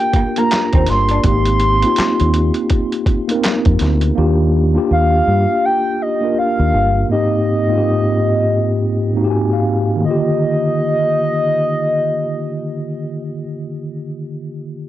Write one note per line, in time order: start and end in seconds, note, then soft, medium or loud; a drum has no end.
0.00 0.36 A#3 medium
0.00 0.37 D4 medium
0.00 0.39 F4 medium
0.00 1.26 G4 medium
0.00 0.13 A#4 medium
0.00 0.39 G5 loud
0.13 0.33 A#3 medium
0.13 kick loud
0.13 closed hi-hat medium
0.36 1.13 A#3 medium
0.36 0.49 A#3 medium
0.36 1.14 D4 medium
0.36 1.15 F4 medium
0.36 1.15 A#4 medium
0.36 0.88 A#5 medium
0.36 closed hi-hat medium
0.51 snare loud
0.51 clap loud
0.51 closed hi-hat loud
0.73 0.85 D#2 loud
0.73 0.86 C4 medium
0.73 kick loud
0.73 closed hi-hat soft
0.86 1.18 G1 loud
0.86 1.23 C6 loud
0.86 muted clean electric guitar stroke soft
0.86 snare soft
0.86 closed hi-hat medium
1.09 1.22 D4 medium
1.09 closed hi-hat soft
1.23 1.83 G#1 loud
1.23 1.73 A#3 medium
1.23 1.73 C4 medium
1.23 1.74 D#4 medium
1.23 1.74 G4 medium
1.23 2.68 C6 loud
1.23 kick loud
1.23 closed hi-hat medium
1.45 closed hi-hat medium
1.60 closed hi-hat medium
1.82 3.04 A#3 medium
1.82 3.04 C4 medium
1.82 3.05 D#4 medium
1.82 3.06 F4 medium
1.82 closed hi-hat medium
1.96 muted fingered electric bass stroke medium
1.96 snare loud
1.96 clap loud
1.96 closed hi-hat medium
2.20 2.50 D#2 medium
2.20 closed hi-hat soft
2.34 closed hi-hat medium
2.54 closed hi-hat soft
2.70 kick loud
2.70 closed hi-hat medium
2.92 closed hi-hat soft
3.06 kick loud
3.06 closed hi-hat medium
3.28 4.05 A#3 medium
3.28 3.34 B3 medium
3.28 4.07 D#4 medium
3.28 4.07 A#4 medium
3.28 closed hi-hat medium
3.35 4.09 C4 medium
3.44 snare loud
3.44 clap loud
3.44 closed hi-hat loud
3.65 3.78 F2 medium
3.65 kick loud
3.65 closed hi-hat soft
3.79 4.10 D2 loud
3.79 snare soft
3.79 closed hi-hat medium
4.01 closed hi-hat soft
4.15 4.76 D#2 loud
4.15 4.65 A#3 medium
4.15 4.66 D4 medium
4.15 4.66 F4 medium
4.15 4.67 G4 medium
4.74 5.96 A#3 medium
4.74 5.97 D4 medium
4.74 5.97 F4 medium
4.74 5.98 G4 medium
4.91 5.20 D#2 medium
4.91 5.67 F5 loud
5.28 5.45 G2 loud
5.65 6.04 G5 loud
6.02 6.38 D#5 medium
6.21 6.98 A#3 medium
6.21 6.99 D4 medium
6.21 7.00 F4 medium
6.21 7.00 A#4 medium
6.39 7.07 F5 loud
6.59 6.71 D#2 medium
6.74 7.03 G1 loud
7.09 7.58 G#2 medium
7.09 7.58 A#3 medium
7.09 7.59 C4 medium
7.09 7.59 D#4 medium
7.09 7.60 G4 medium
7.09 9.26 D#5 medium
7.67 8.89 G#2 medium
7.67 8.90 A#3 medium
7.67 8.90 C4 medium
7.67 8.91 D#4 medium
7.67 7.75 F4 medium
7.77 8.94 G4 medium
9.14 9.91 G#2 medium
9.14 9.92 A#3 medium
9.14 9.92 C4 medium
9.14 9.93 D#4 medium
9.14 9.21 F#4 medium
9.24 9.96 G4 medium
9.30 9.50 G#5 medium
9.53 10.00 F5 medium
9.96 13.14 D#3 medium
9.96 13.18 A#3 medium
10.04 13.22 D3 medium
10.04 13.26 F4 medium
10.04 13.22 D#5 loud
10.11 13.29 G4 medium